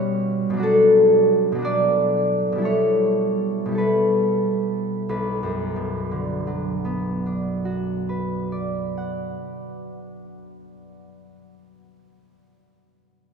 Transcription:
0, 0, Header, 1, 2, 480
1, 0, Start_track
1, 0, Key_signature, 2, "minor"
1, 0, Tempo, 616650
1, 489, Time_signature, 6, 3, 24, 8
1, 489, Tempo, 671892
1, 969, Tempo, 676437
1, 1929, Tempo, 730816
1, 2409, Tempo, 802139
1, 2889, Tempo, 900901
1, 3369, Tempo, 847458
1, 8041, End_track
2, 0, Start_track
2, 0, Title_t, "Harp"
2, 0, Program_c, 0, 46
2, 0, Note_on_c, 0, 47, 46
2, 0, Note_on_c, 0, 55, 39
2, 0, Note_on_c, 0, 61, 37
2, 0, Note_on_c, 0, 62, 39
2, 0, Note_on_c, 0, 66, 37
2, 0, Note_on_c, 0, 71, 66
2, 0, Note_on_c, 0, 73, 65
2, 0, Note_on_c, 0, 74, 61
2, 379, Note_off_c, 0, 47, 0
2, 388, Note_on_c, 0, 47, 42
2, 414, Note_on_c, 0, 54, 38
2, 431, Note_off_c, 0, 62, 0
2, 440, Note_on_c, 0, 62, 40
2, 454, Note_off_c, 0, 66, 0
2, 463, Note_on_c, 0, 66, 41
2, 472, Note_off_c, 0, 55, 0
2, 483, Note_off_c, 0, 61, 0
2, 490, Note_on_c, 0, 69, 70
2, 504, Note_off_c, 0, 73, 0
2, 512, Note_off_c, 0, 71, 0
2, 1116, Note_off_c, 0, 47, 0
2, 1124, Note_on_c, 0, 47, 43
2, 1138, Note_off_c, 0, 54, 0
2, 1146, Note_on_c, 0, 54, 34
2, 1162, Note_off_c, 0, 62, 0
2, 1170, Note_on_c, 0, 62, 33
2, 1187, Note_off_c, 0, 66, 0
2, 1195, Note_on_c, 0, 66, 39
2, 1206, Note_off_c, 0, 74, 0
2, 1214, Note_on_c, 0, 74, 68
2, 1828, Note_off_c, 0, 47, 0
2, 1837, Note_on_c, 0, 47, 41
2, 1858, Note_on_c, 0, 55, 33
2, 1878, Note_on_c, 0, 64, 35
2, 1895, Note_off_c, 0, 69, 0
2, 1904, Note_on_c, 0, 69, 34
2, 1916, Note_off_c, 0, 54, 0
2, 1927, Note_on_c, 0, 73, 63
2, 1928, Note_off_c, 0, 62, 0
2, 1939, Note_off_c, 0, 66, 0
2, 1948, Note_off_c, 0, 74, 0
2, 2564, Note_off_c, 0, 47, 0
2, 2572, Note_on_c, 0, 47, 37
2, 2581, Note_off_c, 0, 55, 0
2, 2588, Note_on_c, 0, 55, 30
2, 2602, Note_off_c, 0, 64, 0
2, 2609, Note_on_c, 0, 64, 31
2, 2620, Note_off_c, 0, 69, 0
2, 2627, Note_on_c, 0, 69, 33
2, 2645, Note_on_c, 0, 71, 47
2, 3356, Note_off_c, 0, 47, 0
2, 3363, Note_off_c, 0, 55, 0
2, 3367, Note_off_c, 0, 71, 0
2, 3371, Note_on_c, 0, 35, 40
2, 3373, Note_off_c, 0, 64, 0
2, 3375, Note_on_c, 0, 71, 37
2, 3381, Note_off_c, 0, 69, 0
2, 3387, Note_off_c, 0, 73, 0
2, 3563, Note_on_c, 0, 42, 37
2, 3751, Note_on_c, 0, 47, 37
2, 3951, Note_on_c, 0, 50, 32
2, 4152, Note_on_c, 0, 54, 35
2, 4366, Note_on_c, 0, 59, 31
2, 4601, Note_on_c, 0, 62, 31
2, 4821, Note_on_c, 0, 66, 31
2, 5063, Note_off_c, 0, 71, 0
2, 5070, Note_on_c, 0, 71, 29
2, 5314, Note_on_c, 0, 74, 28
2, 5571, Note_on_c, 0, 78, 26
2, 5580, Note_off_c, 0, 35, 0
2, 5772, Note_off_c, 0, 42, 0
2, 5960, Note_off_c, 0, 47, 0
2, 6160, Note_off_c, 0, 50, 0
2, 6342, Note_off_c, 0, 54, 0
2, 6556, Note_off_c, 0, 59, 0
2, 6792, Note_off_c, 0, 62, 0
2, 7011, Note_off_c, 0, 66, 0
2, 7083, Note_off_c, 0, 74, 0
2, 7083, Note_off_c, 0, 78, 0
2, 7085, Note_off_c, 0, 71, 0
2, 8041, End_track
0, 0, End_of_file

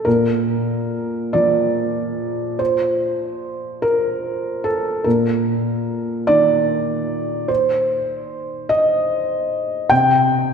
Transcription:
0, 0, Header, 1, 2, 480
1, 0, Start_track
1, 0, Key_signature, -2, "major"
1, 0, Tempo, 849858
1, 33, Time_signature, 6, 3, 24, 8
1, 993, Tempo, 826446
1, 2433, Tempo, 810811
1, 6161, End_track
2, 0, Start_track
2, 0, Title_t, "Felt piano"
2, 0, Program_c, 0, 0
2, 0, Control_c, 0, 64, 127
2, 27, Note_on_c, 0, 70, 68
2, 34, Note_on_c, 0, 46, 49
2, 43, Control_c, 0, 64, 0
2, 131, Control_c, 0, 64, 127
2, 752, Note_off_c, 0, 70, 0
2, 752, Note_on_c, 0, 74, 78
2, 760, Note_on_c, 0, 53, 44
2, 1456, Note_off_c, 0, 46, 0
2, 1476, Note_on_c, 0, 72, 70
2, 1477, Note_off_c, 0, 74, 0
2, 1489, Control_c, 0, 64, 0
2, 1570, Control_c, 0, 64, 127
2, 2192, Note_off_c, 0, 72, 0
2, 2192, Note_on_c, 0, 70, 78
2, 2672, Note_on_c, 0, 69, 76
2, 2674, Note_off_c, 0, 70, 0
2, 2910, Note_on_c, 0, 70, 64
2, 2914, Note_off_c, 0, 69, 0
2, 2917, Note_on_c, 0, 46, 47
2, 2918, Note_off_c, 0, 53, 0
2, 2926, Control_c, 0, 64, 0
2, 3026, Control_c, 0, 64, 127
2, 3637, Note_on_c, 0, 74, 85
2, 3638, Note_off_c, 0, 70, 0
2, 3646, Note_on_c, 0, 51, 43
2, 4338, Note_off_c, 0, 46, 0
2, 4354, Note_on_c, 0, 72, 66
2, 4359, Note_off_c, 0, 74, 0
2, 4370, Control_c, 0, 64, 0
2, 4467, Control_c, 0, 64, 127
2, 5071, Note_on_c, 0, 75, 84
2, 5072, Note_off_c, 0, 72, 0
2, 5782, Note_on_c, 0, 79, 87
2, 5787, Note_off_c, 0, 75, 0
2, 5791, Note_on_c, 0, 48, 47
2, 5792, Note_off_c, 0, 51, 0
2, 5798, Control_c, 0, 64, 0
2, 5892, Control_c, 0, 64, 127
2, 6161, Note_off_c, 0, 48, 0
2, 6161, Note_off_c, 0, 79, 0
2, 6161, End_track
0, 0, End_of_file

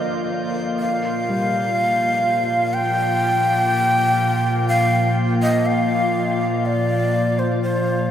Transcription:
0, 0, Header, 1, 6, 480
1, 0, Start_track
1, 0, Tempo, 983607
1, 386, Time_signature, 4, 2, 24, 8
1, 3957, End_track
2, 0, Start_track
2, 0, Title_t, "Synth texture"
2, 0, Program_c, 0, 99
2, 0, Note_on_c, 0, 65, 80
2, 0, Note_on_c, 0, 91, 75
2, 3957, Note_off_c, 0, 65, 0
2, 3957, Note_off_c, 0, 91, 0
2, 3957, End_track
3, 0, Start_track
3, 0, Title_t, "Shakuhachi"
3, 0, Program_c, 1, 77
3, 0, Note_on_c, 1, 75, 87
3, 143, Note_off_c, 1, 75, 0
3, 385, Note_on_c, 1, 77, 103
3, 1335, Note_on_c, 1, 79, 118
3, 1343, Note_off_c, 1, 77, 0
3, 2284, Note_off_c, 1, 79, 0
3, 2287, Note_on_c, 1, 77, 98
3, 2508, Note_off_c, 1, 77, 0
3, 2647, Note_on_c, 1, 75, 88
3, 2762, Note_on_c, 1, 77, 94
3, 2769, Note_off_c, 1, 75, 0
3, 3248, Note_on_c, 1, 74, 95
3, 3256, Note_off_c, 1, 77, 0
3, 3606, Note_on_c, 1, 72, 82
3, 3614, Note_off_c, 1, 74, 0
3, 3719, Note_off_c, 1, 72, 0
3, 3722, Note_on_c, 1, 72, 88
3, 3957, Note_off_c, 1, 72, 0
3, 3957, End_track
4, 0, Start_track
4, 0, Title_t, "Ambient pad"
4, 0, Program_c, 2, 92
4, 0, Note_on_c, 2, 58, 73
4, 0, Note_on_c, 2, 65, 82
4, 0, Note_on_c, 2, 70, 70
4, 0, Note_on_c, 2, 77, 73
4, 383, Note_off_c, 2, 58, 0
4, 385, Note_off_c, 2, 65, 0
4, 386, Note_on_c, 2, 46, 90
4, 504, Note_on_c, 2, 53, 69
4, 941, Note_on_c, 2, 65, 78
4, 1279, Note_off_c, 2, 77, 0
4, 1280, Note_on_c, 2, 58, 85
4, 1358, Note_off_c, 2, 70, 0
4, 2416, Note_on_c, 2, 77, 73
4, 3957, Note_off_c, 2, 46, 0
4, 3957, Note_off_c, 2, 53, 0
4, 3957, Note_off_c, 2, 58, 0
4, 3957, Note_off_c, 2, 65, 0
4, 3957, Note_off_c, 2, 77, 0
4, 3957, End_track
5, 0, Start_track
5, 0, Title_t, "Synth drone"
5, 0, Program_c, 3, 95
5, 0, Note_on_c, 3, 58, 72
5, 0, Note_on_c, 3, 65, 68
5, 3957, Note_off_c, 3, 58, 0
5, 3957, Note_off_c, 3, 65, 0
5, 3957, End_track
6, 0, Start_track
6, 0, Title_t, "Felt piano"
6, 0, Program_c, 4, 0
6, 0, Control_c, 4, 64, 127
6, 0, Note_on_c, 4, 50, 71
6, 0, Note_on_c, 4, 53, 52
6, 0, Note_on_c, 4, 86, 70
6, 391, Control_c, 4, 64, 0
6, 485, Control_c, 4, 64, 127
6, 629, Note_on_c, 4, 55, 57
6, 722, Note_off_c, 4, 53, 0
6, 921, Note_off_c, 4, 50, 0
6, 1162, Note_off_c, 4, 86, 0
6, 2364, Note_off_c, 4, 55, 0
6, 3957, End_track
0, 0, End_of_file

